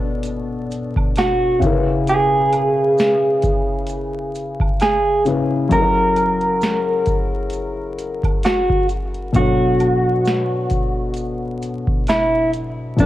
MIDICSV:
0, 0, Header, 1, 4, 480
1, 0, Start_track
1, 0, Tempo, 909091
1, 1096, Time_signature, 4, 2, 24, 8
1, 6895, End_track
2, 0, Start_track
2, 0, Title_t, "Clean electric guitar"
2, 0, Program_c, 0, 27
2, 0, Note_on_c, 0, 62, 92
2, 599, Note_off_c, 0, 62, 0
2, 626, Note_on_c, 0, 66, 91
2, 840, Note_off_c, 0, 66, 0
2, 1106, Note_on_c, 0, 68, 97
2, 2520, Note_off_c, 0, 68, 0
2, 2543, Note_on_c, 0, 68, 88
2, 2758, Note_off_c, 0, 68, 0
2, 3022, Note_on_c, 0, 70, 93
2, 4438, Note_off_c, 0, 70, 0
2, 4462, Note_on_c, 0, 66, 79
2, 4677, Note_off_c, 0, 66, 0
2, 4942, Note_on_c, 0, 66, 97
2, 6358, Note_off_c, 0, 66, 0
2, 6385, Note_on_c, 0, 64, 79
2, 6599, Note_off_c, 0, 64, 0
2, 6865, Note_on_c, 0, 62, 110
2, 6895, Note_off_c, 0, 62, 0
2, 6895, End_track
3, 0, Start_track
3, 0, Title_t, "Felt piano"
3, 0, Program_c, 1, 0
3, 0, Control_c, 1, 64, 127
3, 0, Note_on_c, 1, 47, 61
3, 0, Note_on_c, 1, 59, 63
3, 0, Note_on_c, 1, 62, 59
3, 0, Note_on_c, 1, 69, 64
3, 0, Note_on_c, 1, 73, 57
3, 828, Note_off_c, 1, 47, 0
3, 833, Note_off_c, 1, 59, 0
3, 837, Note_off_c, 1, 73, 0
3, 841, Note_off_c, 1, 62, 0
3, 842, Note_on_c, 1, 49, 73
3, 846, Note_off_c, 1, 69, 0
3, 852, Note_on_c, 1, 61, 64
3, 860, Note_on_c, 1, 64, 62
3, 862, Control_c, 1, 64, 0
3, 870, Note_on_c, 1, 68, 65
3, 879, Note_on_c, 1, 70, 60
3, 907, Note_off_c, 1, 70, 0
3, 913, Note_on_c, 1, 71, 70
3, 957, Control_c, 1, 64, 127
3, 2748, Note_off_c, 1, 49, 0
3, 2753, Note_off_c, 1, 61, 0
3, 2757, Note_off_c, 1, 64, 0
3, 2762, Note_off_c, 1, 68, 0
3, 2771, Note_on_c, 1, 49, 52
3, 2776, Note_on_c, 1, 61, 48
3, 2780, Note_on_c, 1, 64, 50
3, 2781, Note_off_c, 1, 71, 0
3, 2785, Note_on_c, 1, 68, 50
3, 2789, Note_on_c, 1, 71, 62
3, 3004, Note_on_c, 1, 54, 63
3, 3005, Note_off_c, 1, 61, 0
3, 3013, Note_off_c, 1, 49, 0
3, 3013, Note_off_c, 1, 64, 0
3, 3013, Note_on_c, 1, 61, 60
3, 3020, Note_off_c, 1, 68, 0
3, 3021, Note_on_c, 1, 64, 56
3, 3022, Note_off_c, 1, 71, 0
3, 3023, Control_c, 1, 64, 0
3, 3031, Note_on_c, 1, 68, 56
3, 3040, Note_on_c, 1, 69, 52
3, 3068, Note_off_c, 1, 69, 0
3, 3074, Note_on_c, 1, 70, 78
3, 3115, Control_c, 1, 64, 127
3, 4909, Note_off_c, 1, 54, 0
3, 4913, Note_off_c, 1, 61, 0
3, 4917, Note_off_c, 1, 64, 0
3, 4922, Note_off_c, 1, 68, 0
3, 4925, Note_on_c, 1, 47, 60
3, 4934, Note_on_c, 1, 54, 52
3, 4943, Control_c, 1, 64, 0
3, 4944, Note_off_c, 1, 70, 0
3, 4944, Note_on_c, 1, 62, 56
3, 4952, Note_on_c, 1, 69, 54
3, 4961, Note_on_c, 1, 73, 61
3, 5028, Control_c, 1, 64, 127
3, 6829, Note_off_c, 1, 47, 0
3, 6834, Note_off_c, 1, 54, 0
3, 6839, Note_off_c, 1, 62, 0
3, 6843, Note_off_c, 1, 69, 0
3, 6845, Note_on_c, 1, 47, 64
3, 6847, Note_off_c, 1, 73, 0
3, 6854, Note_on_c, 1, 54, 60
3, 6863, Note_on_c, 1, 62, 53
3, 6872, Note_on_c, 1, 69, 62
3, 6895, Note_off_c, 1, 47, 0
3, 6895, Note_off_c, 1, 54, 0
3, 6895, Note_off_c, 1, 62, 0
3, 6895, Note_off_c, 1, 69, 0
3, 6895, End_track
4, 0, Start_track
4, 0, Title_t, "Drums"
4, 122, Note_on_c, 9, 42, 84
4, 131, Note_on_c, 9, 82, 71
4, 175, Note_off_c, 9, 42, 0
4, 184, Note_off_c, 9, 82, 0
4, 375, Note_on_c, 9, 82, 52
4, 379, Note_on_c, 9, 42, 61
4, 428, Note_off_c, 9, 82, 0
4, 432, Note_off_c, 9, 42, 0
4, 508, Note_on_c, 9, 36, 95
4, 513, Note_on_c, 9, 76, 63
4, 561, Note_off_c, 9, 36, 0
4, 566, Note_off_c, 9, 76, 0
4, 611, Note_on_c, 9, 42, 86
4, 619, Note_on_c, 9, 76, 66
4, 619, Note_on_c, 9, 82, 64
4, 626, Note_on_c, 9, 38, 114
4, 664, Note_off_c, 9, 42, 0
4, 672, Note_off_c, 9, 76, 0
4, 672, Note_off_c, 9, 82, 0
4, 678, Note_off_c, 9, 38, 0
4, 855, Note_on_c, 9, 36, 112
4, 856, Note_on_c, 9, 82, 46
4, 857, Note_on_c, 9, 42, 78
4, 908, Note_off_c, 9, 36, 0
4, 909, Note_off_c, 9, 82, 0
4, 910, Note_off_c, 9, 42, 0
4, 1094, Note_on_c, 9, 42, 80
4, 1098, Note_on_c, 9, 82, 63
4, 1147, Note_off_c, 9, 42, 0
4, 1150, Note_off_c, 9, 82, 0
4, 1334, Note_on_c, 9, 42, 65
4, 1335, Note_on_c, 9, 76, 60
4, 1335, Note_on_c, 9, 82, 43
4, 1387, Note_off_c, 9, 42, 0
4, 1388, Note_off_c, 9, 76, 0
4, 1388, Note_off_c, 9, 82, 0
4, 1574, Note_on_c, 9, 82, 66
4, 1584, Note_on_c, 9, 38, 108
4, 1587, Note_on_c, 9, 42, 87
4, 1627, Note_off_c, 9, 82, 0
4, 1637, Note_off_c, 9, 38, 0
4, 1639, Note_off_c, 9, 42, 0
4, 1808, Note_on_c, 9, 42, 60
4, 1814, Note_on_c, 9, 36, 96
4, 1814, Note_on_c, 9, 82, 43
4, 1860, Note_off_c, 9, 42, 0
4, 1867, Note_off_c, 9, 36, 0
4, 1867, Note_off_c, 9, 82, 0
4, 2042, Note_on_c, 9, 42, 90
4, 2055, Note_on_c, 9, 82, 72
4, 2094, Note_off_c, 9, 42, 0
4, 2107, Note_off_c, 9, 82, 0
4, 2297, Note_on_c, 9, 82, 53
4, 2300, Note_on_c, 9, 42, 55
4, 2349, Note_off_c, 9, 82, 0
4, 2353, Note_off_c, 9, 42, 0
4, 2429, Note_on_c, 9, 36, 94
4, 2435, Note_on_c, 9, 76, 60
4, 2481, Note_off_c, 9, 36, 0
4, 2488, Note_off_c, 9, 76, 0
4, 2533, Note_on_c, 9, 42, 86
4, 2538, Note_on_c, 9, 76, 66
4, 2538, Note_on_c, 9, 82, 65
4, 2547, Note_on_c, 9, 38, 119
4, 2586, Note_off_c, 9, 42, 0
4, 2591, Note_off_c, 9, 76, 0
4, 2591, Note_off_c, 9, 82, 0
4, 2600, Note_off_c, 9, 38, 0
4, 2774, Note_on_c, 9, 82, 44
4, 2778, Note_on_c, 9, 42, 74
4, 2827, Note_off_c, 9, 82, 0
4, 2831, Note_off_c, 9, 42, 0
4, 3015, Note_on_c, 9, 36, 114
4, 3015, Note_on_c, 9, 42, 84
4, 3017, Note_on_c, 9, 82, 70
4, 3068, Note_off_c, 9, 36, 0
4, 3068, Note_off_c, 9, 42, 0
4, 3069, Note_off_c, 9, 82, 0
4, 3254, Note_on_c, 9, 42, 58
4, 3257, Note_on_c, 9, 76, 60
4, 3257, Note_on_c, 9, 82, 45
4, 3307, Note_off_c, 9, 42, 0
4, 3310, Note_off_c, 9, 76, 0
4, 3310, Note_off_c, 9, 82, 0
4, 3385, Note_on_c, 9, 42, 37
4, 3438, Note_off_c, 9, 42, 0
4, 3493, Note_on_c, 9, 82, 79
4, 3502, Note_on_c, 9, 38, 95
4, 3505, Note_on_c, 9, 42, 80
4, 3546, Note_off_c, 9, 82, 0
4, 3555, Note_off_c, 9, 38, 0
4, 3558, Note_off_c, 9, 42, 0
4, 3727, Note_on_c, 9, 42, 53
4, 3733, Note_on_c, 9, 36, 93
4, 3735, Note_on_c, 9, 82, 45
4, 3780, Note_off_c, 9, 42, 0
4, 3786, Note_off_c, 9, 36, 0
4, 3787, Note_off_c, 9, 82, 0
4, 3959, Note_on_c, 9, 42, 87
4, 3975, Note_on_c, 9, 82, 72
4, 4012, Note_off_c, 9, 42, 0
4, 4027, Note_off_c, 9, 82, 0
4, 4216, Note_on_c, 9, 42, 63
4, 4217, Note_on_c, 9, 82, 49
4, 4269, Note_off_c, 9, 42, 0
4, 4270, Note_off_c, 9, 82, 0
4, 4348, Note_on_c, 9, 36, 94
4, 4352, Note_on_c, 9, 42, 37
4, 4355, Note_on_c, 9, 76, 57
4, 4400, Note_off_c, 9, 36, 0
4, 4405, Note_off_c, 9, 42, 0
4, 4408, Note_off_c, 9, 76, 0
4, 4452, Note_on_c, 9, 42, 89
4, 4459, Note_on_c, 9, 76, 70
4, 4459, Note_on_c, 9, 82, 67
4, 4466, Note_on_c, 9, 38, 120
4, 4505, Note_off_c, 9, 42, 0
4, 4512, Note_off_c, 9, 76, 0
4, 4512, Note_off_c, 9, 82, 0
4, 4519, Note_off_c, 9, 38, 0
4, 4592, Note_on_c, 9, 36, 95
4, 4645, Note_off_c, 9, 36, 0
4, 4695, Note_on_c, 9, 42, 76
4, 4695, Note_on_c, 9, 82, 41
4, 4747, Note_off_c, 9, 82, 0
4, 4748, Note_off_c, 9, 42, 0
4, 4828, Note_on_c, 9, 42, 38
4, 4881, Note_off_c, 9, 42, 0
4, 4934, Note_on_c, 9, 42, 82
4, 4935, Note_on_c, 9, 82, 68
4, 4936, Note_on_c, 9, 36, 101
4, 4987, Note_off_c, 9, 42, 0
4, 4988, Note_off_c, 9, 82, 0
4, 4989, Note_off_c, 9, 36, 0
4, 5176, Note_on_c, 9, 42, 58
4, 5176, Note_on_c, 9, 76, 62
4, 5176, Note_on_c, 9, 82, 41
4, 5228, Note_off_c, 9, 42, 0
4, 5229, Note_off_c, 9, 76, 0
4, 5229, Note_off_c, 9, 82, 0
4, 5413, Note_on_c, 9, 82, 71
4, 5425, Note_on_c, 9, 38, 112
4, 5428, Note_on_c, 9, 42, 78
4, 5466, Note_off_c, 9, 82, 0
4, 5478, Note_off_c, 9, 38, 0
4, 5481, Note_off_c, 9, 42, 0
4, 5649, Note_on_c, 9, 42, 59
4, 5655, Note_on_c, 9, 36, 87
4, 5655, Note_on_c, 9, 82, 46
4, 5702, Note_off_c, 9, 42, 0
4, 5708, Note_off_c, 9, 36, 0
4, 5708, Note_off_c, 9, 82, 0
4, 5881, Note_on_c, 9, 42, 85
4, 5894, Note_on_c, 9, 82, 77
4, 5934, Note_off_c, 9, 42, 0
4, 5947, Note_off_c, 9, 82, 0
4, 6137, Note_on_c, 9, 82, 49
4, 6139, Note_on_c, 9, 42, 56
4, 6190, Note_off_c, 9, 82, 0
4, 6192, Note_off_c, 9, 42, 0
4, 6269, Note_on_c, 9, 36, 92
4, 6322, Note_off_c, 9, 36, 0
4, 6373, Note_on_c, 9, 42, 84
4, 6380, Note_on_c, 9, 76, 68
4, 6380, Note_on_c, 9, 82, 72
4, 6387, Note_on_c, 9, 38, 111
4, 6426, Note_off_c, 9, 42, 0
4, 6433, Note_off_c, 9, 76, 0
4, 6433, Note_off_c, 9, 82, 0
4, 6440, Note_off_c, 9, 38, 0
4, 6616, Note_on_c, 9, 82, 43
4, 6618, Note_on_c, 9, 42, 70
4, 6668, Note_off_c, 9, 82, 0
4, 6671, Note_off_c, 9, 42, 0
4, 6856, Note_on_c, 9, 42, 82
4, 6858, Note_on_c, 9, 36, 98
4, 6858, Note_on_c, 9, 82, 73
4, 6895, Note_off_c, 9, 36, 0
4, 6895, Note_off_c, 9, 42, 0
4, 6895, Note_off_c, 9, 82, 0
4, 6895, End_track
0, 0, End_of_file